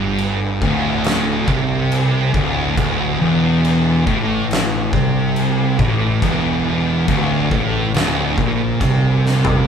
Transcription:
Already playing: picked electric bass G1, distorted electric guitar G2
0.18 crash
0.62 picked electric bass D1, distorted electric guitar D2, kick
1.04 snare, crash
1.48 picked electric bass C2, distorted electric guitar C3, kick
1.92 crash
2.34 picked electric bass D1, distorted electric guitar D2, kick
2.77 picked electric bass D1, distorted electric guitar D2, kick, crash
3.19 picked electric bass E1, distorted electric guitar E2
3.65 crash
4.07 picked electric bass A1, distorted electric guitar A2, kick
4.51 snare, crash
4.92 picked electric bass C2, distorted electric guitar C3, kick
5.36 crash
5.79 picked electric bass A1, distorted electric guitar A2, kick
6.22 picked electric bass E1, distorted electric guitar E2, kick, crash
7.07 picked electric bass D1, distorted electric guitar D2, kick, crash
7.51 picked electric bass A1, distorted electric guitar A2, kick
7.94 picked electric bass D1, distorted electric guitar D2, snare, crash
8.38 picked electric bass A#1, distorted electric guitar A#2, kick
8.81 picked electric bass C2, distorted electric guitar C3, kick, crash
9.26 snare
9.45 floor tom

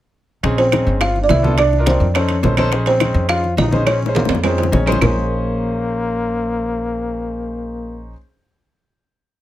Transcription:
0.43 upright bass A#1, grand piano C4 C#4 D#4 G#4, high bongo, high conga, high timbale
0.58 trombone C4, kalimba C5, high bongo, high conga, high timbale
0.72 grand piano C4 C#4 D#4 G#4, high bongo, high conga, high timbale, low timbale, claves
0.87 upright bass G1
1.00 trombone F4, kalimba F5, high bongo, high conga, high timbale, claves
1.16 high bongo, high conga
1.22 trombone D4, kalimba D5
1.28 upright bass C2, trombone E4, kalimba E5, high bongo, low bongo, high conga, high timbale, low timbale
1.43 grand piano B3 D4 F4 A4, high bongo, high conga
1.57 trombone D4, kalimba D5, high bongo, high conga, high timbale, claves
1.73 high bongo, high conga
1.78 grand piano D4 D#4 F4 A#4
1.86 trombone C4, kalimba C5, high bongo, high conga, high timbale, low timbale
2.00 upright bass F2, high conga
2.14 grand piano C#4 D#4 A4 C5, trombone C#4, kalimba C#5, high bongo, high conga, high timbale, claves
2.29 high bongo, high conga, high timbale
2.43 upright bass A#1, grand piano C#4 D#4 A4 C5, high bongo, low bongo, high conga, low timbale
2.57 grand piano C#4 D#4 A4 C5, high bongo, high conga, high timbale, claves
2.72 grand piano C#4 D#4 G#4 C5, high bongo, high conga, high timbale
2.86 trombone C4, kalimba C5, high bongo, high conga, high timbale
3.00 grand piano C#4 D#4 G#4 C5, high bongo, high conga, high timbale, low timbale, claves
3.14 upright bass F2
3.29 trombone F4, kalimba F5, high bongo, high conga, high timbale, claves
3.44 high bongo, high conga
3.57 upright bass A#1, trombone D#4, kalimba D#5, high bongo, low bongo, high conga, high timbale, low timbale
3.71 grand piano C#4 D#4 G#4 C5, high bongo, high conga
3.86 trombone C#4, kalimba C#5, high bongo, high conga, high timbale, claves
4.02 high bongo, high conga
4.07 grand piano C#4 D#4 G#4 C5
4.15 trombone A#3, kalimba A#4, high conga, high timbale
4.25 upright bass F2, low bongo, high timbale
4.31 low bongo, high conga
4.43 trombone C4, grand piano C#4 D#4 G#4 C5, kalimba C5, high conga, low timbale, claves
4.58 high conga, low timbale
4.63 low bongo
4.72 upright bass A#1, grand piano C#4 D#4 G#4 C#5, low bongo, high conga
4.86 grand piano C#4 D#4 G#4 C5, low timbale, claves
4.92 low bongo
4.98 upright bass A#1, trombone A#3, grand piano C#4 D#4 G#4, kalimba A#4, low bongo, low conga, low timbale, claves
5.04 grand piano C5

